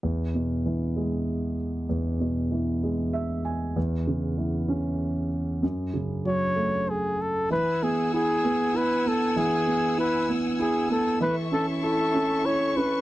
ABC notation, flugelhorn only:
X:1
M:6/8
L:1/8
Q:3/8=64
K:E
V:1 name="Flugelhorn"
z6 | z6 | z6 | z2 c2 G A |
B G G2 B A | G2 B z G A | B A A2 c B |]